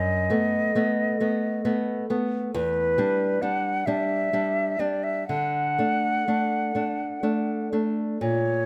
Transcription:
Already playing: F#2 D#5
0.30 A3 B3
0.75 A3 B3
1.20 A3 B3
1.65 A3 B3
2.10 A3 B3
2.54 E2 B4
2.98 G3 D4
3.42 G3 D4 F#5
3.86 G3 D4 E5
4.33 G3 D4
4.79 G3 D4 D5
5.04 E5
5.28 D3 F#5
5.78 A3 D4
6.28 A3 D4
6.75 A3 D4
7.23 A3 D4
7.72 A3 D4
8.21 A#2 C#5

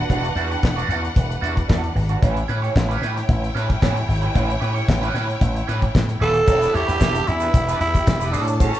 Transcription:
Already playing: D4 B4 F#5
0.09 E1 G3 D4 F#4, kick, closed hi-hat
0.24 closed hi-hat
0.35 E2 G3 D4 F#4, closed hi-hat
0.51 G3 D4 G4, closed hi-hat
0.63 E1, muted clean electric guitar stroke, kick, snare, clap
0.76 G3 D4 F#4, closed hi-hat
0.88 E2 G3 D4 F#4, closed hi-hat
1.04 muted clean electric guitar stroke, closed hi-hat
1.16 E1, kick, closed hi-hat
1.29 muted clean electric guitar stroke, closed hi-hat
1.41 E2 G3 D4 F#4, closed hi-hat
1.56 muted clean electric guitar stroke, kick, closed hi-hat
1.68 E2 G3 D4 F#4, kick, snare, clap
1.83 muted clean electric guitar stroke, closed hi-hat
1.95 G#1, muted clean electric guitar stroke, open hi-hat
2.09 G3 D4 F#4, closed hi-hat
2.22 A1 C#4 E4 G4 B4 C#5 G5, kick, closed hi-hat
2.37 closed hi-hat
2.48 A2 C#4 G4 B4, closed hi-hat
2.62 C#4 G4 C#5, closed hi-hat
2.75 A1, muted clean electric guitar stroke, kick, snare, clap
2.89 C#4 G4 B4, closed hi-hat
3.02 A2 C#4 G4 B4, closed hi-hat
3.16 muted clean electric guitar stroke, snare, closed hi-hat
3.29 A1, kick, closed hi-hat
3.42 muted clean electric guitar stroke, closed hi-hat
3.55 A2 C#4 G4 B4, closed hi-hat
3.69 muted clean electric guitar stroke, kick, closed hi-hat
3.81 A2 C#4 G4 B4, kick, snare, clap
3.95 muted clean electric guitar stroke, closed hi-hat
4.07 G#1, muted clean electric guitar stroke, open hi-hat
4.22 C#4 G4 B4, closed hi-hat
4.34 A1 C#4 G4 B4, kick, closed hi-hat
4.50 closed hi-hat
4.60 A2 C#4 G4 B4, closed hi-hat
4.74 C#4 G4 C#5, closed hi-hat
4.87 A1, muted clean electric guitar stroke, kick, snare, clap
5.02 C#4 G4 B4, closed hi-hat
5.14 A2 C#4 G4 B4, closed hi-hat
5.29 muted clean electric guitar stroke, closed hi-hat
5.41 A1, kick, closed hi-hat
5.55 muted clean electric guitar stroke, closed hi-hat
5.67 A2 C#4 G4 B4, closed hi-hat
5.82 muted clean electric guitar stroke, kick, closed hi-hat
5.95 A2, muted clean electric guitar stroke, kick, snare, clap
6.09 muted clean electric guitar stroke, closed hi-hat
6.20 D#1 C#4 G4 A4 B4, open hi-hat
6.34 muted clean electric guitar stroke, closed hi-hat
6.46 E1 D4 E4 G4 B4 E5, kick, crash, shaker
6.62 closed hi-hat, shaker
6.73 E2 D4 G4 C#5, closed hi-hat
6.87 E2 D4 G4 B4, closed hi-hat, shaker
7.00 E1 D4 G4 B4, kick, snare, clap, shaker
7.15 muted clean electric guitar stroke, closed hi-hat, shaker
7.27 E2 E4, muted clean electric guitar stroke, closed hi-hat
7.40 D4 G4 B4, closed hi-hat, shaker
7.54 E1 G4 G5, kick, closed hi-hat, shaker
7.68 D4 G4 B4, closed hi-hat, shaker
7.80 E2 E4, muted clean electric guitar stroke, closed hi-hat
7.94 muted clean electric guitar stroke, kick, closed hi-hat, shaker
8.07 E1, muted clean electric guitar stroke, kick, snare, clap, shaker
8.20 D4 G4 B4, closed hi-hat, shaker
8.32 A2 C#4 D4 G4 A4 A5, open hi-hat, shaker
8.48 muted clean electric guitar stroke, closed hi-hat, shaker
8.55 D4
8.60 C#4 G4 A4, kick, closed hi-hat, shaker
8.74 closed hi-hat, shaker

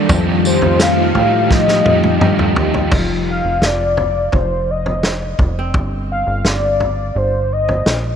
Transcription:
Already playing: G3 A#3 D4 F4 A4
0.08 F2 D#3 F3 A3 D#4 F4 G4, kick, floor tom, tambourine
0.27 F4
0.43 F4 G4 C5, tambourine
0.48 D#4
0.62 F2 F4, floor tom
0.79 F3 A3 D#4 F4 G4 F5, snare, tambourine
0.97 F4
1.15 A2 F4 G4, floor tom
1.19 D#4
1.33 F4
1.49 F3 A3 D#4 F4 D#5, kick, snare
1.54 G4
1.68 F4, snare
1.84 F2 F4 G4, high tom
1.89 D#4
2.03 F4, high tom
2.19 G2 F3 A3 D#4 F4 G4, mid tom
2.39 F4, mid tom
2.54 D#2 F4 G4, floor tom
2.59 D#4
2.74 F4, floor tom
2.92 F1, kick, floor tom, crash
2.99 F4
3.30 F5
3.45 F1
3.62 F1 D5, snare
3.97 floor tom
4.32 F1 C5, kick, floor tom
4.71 D#5
4.86 floor tom
5.03 snare
5.39 F1, kick, floor tom
5.59 C4
5.74 G1, kick, floor tom
6.12 F5
6.27 G1
6.45 G1 D5, snare
6.80 floor tom
7.15 G1 C5
7.53 D#5
7.69 floor tom
7.86 A#1, snare

